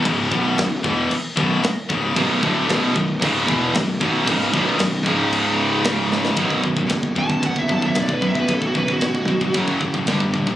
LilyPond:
<<
  \new Staff \with { instrumentName = "Lead electric guitar" } { \time 4/4 \key b \minor \tempo 4 = 114 r1 | r1 | r1 | r4. a''8 fis''16 e''16 a''16 e''16 d''16 b'16 e''16 b'16 |
a'16 fis'16 b'16 fis'16 fis'4 r2 | }
  \new Staff \with { instrumentName = "Distorted electric guitar" } { \clef bass \time 4/4 \key b \minor <cis, gis, cis>8 <b,, fis, b,>8 <b,, fis,>8 <e, b, e>8 r8 <b,, fis, b,>8 r8 <cis, gis, cis>8 | <b,, fis, b,>8 <d, a, d>8 <b,, fis, b,>8 <b,, fis,>8 <cis, gis, cis>8 <e, b, e>8 <b,, fis,>8 <b,, fis, b,>8 | <cis, gis, cis>8 <b,, fis, b,>8 <b,, fis,>8 <cis, gis, cis>2~ <cis, gis, cis>8 | <b,, fis, b,>8 <b,, fis,>16 <b,, fis,>16 <b,, fis,>8 <b,, fis,>16 <b,, fis,>16 <b,, fis,>8 <b,, fis,>16 <b,, fis,>16 <b,, fis,>16 <b,, fis,>16 <b,, fis,>16 <b,, fis,>16 |
<b,, fis,>8 <b,, fis,>16 <b,, fis,>16 <b,, fis,>8 <b,, fis,>16 <b,, fis,>16 <fis, cis fis>8 <fis, cis>16 <fis, cis>16 <g, d g>16 <g, d>16 <g, d>16 <g, d>16 | }
  \new Staff \with { instrumentName = "Distorted electric guitar" } { \clef bass \time 4/4 \key b \minor r1 | <b,, fis, b,>8 <d, a, d>8 <b,, fis, b,>8 <b,, fis,>8 <cis, gis, cis>8 <e, b, e>8 <b,, fis,>8 <b,, fis, b,>8 | <cis, gis, cis>8 <b,, fis, b,>8 <b,, fis,>8 <cis, gis, cis>2~ <cis, gis, cis>8 | <b,, fis, b,>8 <b,, fis,>16 <b,, fis,>16 <b,, fis,>8 <b,, fis,>16 <b,, fis,>16 <b,, fis,>8 <b,, fis,>16 <b,, fis,>16 <b,, fis,>16 <b,, fis,>16 <b,, fis,>16 <b,, fis,>16 |
<b,, fis,>8 <b,, fis,>16 <b,, fis,>16 <b,, fis,>8 <b,, fis,>16 <b,, fis,>16 <fis, cis fis>8 <fis, cis>16 <fis, cis>16 <g, d g>16 <g, d>16 <g, d>16 <g, d>16 | }
  \new Staff \with { instrumentName = "Distorted electric guitar" } { \clef bass \time 4/4 \key b \minor <cis, gis, cis>8 <b,, fis, b,>8 <b,, fis,>8 <e, b, e>8 r8 <b,, fis, b,>8 r8 <cis, gis, cis>8 | <b,, fis, b,>8 <d, a, d>8 <b,, fis, b,>8 <b,, fis,>8 <cis, gis, cis>8 <e, b, e>8 <b,, fis,>8 <b,, fis, b,>8 | <cis, gis, cis>8 <b,, fis, b,>8 <b,, fis,>8 <cis, gis, cis>2~ <cis, gis, cis>8 | <b,, fis, b,>2.~ <b,, fis, b,>8 <b,, fis, b,>8 |
<b,, fis, b,>2 <fis, cis fis>4 <g, d g>4 | }
  \new Staff \with { instrumentName = "Fingered electric bass" } { \clef bass \time 4/4 \key b \minor cis,,8 b,,,8 b,,,8 e,,8 r8 b,,,8 r8 cis,,8 | b,,,8 d,,8 b,,,8 b,,,8 cis,,8 e,,8 b,,,8 b,,,8 | cis,,8 b,,,8 b,,,8 cis,,2~ cis,,8 | b,,,8 b,,,8 fis,,8 b,,,8 fis,,8 b,,,8 b,,8 b,,,8 |
b,,,8 b,,,8 b,,,8 g,,8 fis,,8 a,,8 g,,8 ais,,8 | }
  \new DrumStaff \with { instrumentName = "Drums" } \drummode { \time 4/4 <cymc bd>8 bd8 <cymc sn>8 bd8 cymc8 bd8 <cymc sn>8 bd8 | <cymc bd>8 bd8 <cymc sn>8 bd8 <cymc bd>8 bd8 <cymc sn>8 bd8 | <cymc bd>8 bd8 <cymc sn>8 bd8 cymc4 <cymc sn>8 sn16 sn16 | <bd rb>16 bd16 bd16 bd16 <bd rb sn>16 bd16 bd16 bd16 <bd rb>16 bd16 bd16 bd16 <bd rb sn>16 bd16 bd16 bd16 |
<bd rb>16 bd16 bd16 bd16 <bd rb sn>16 bd16 bd16 bd16 <bd rb>16 bd16 bd16 bd16 <bd rb sn>16 bd16 bd16 bd16 | }
>>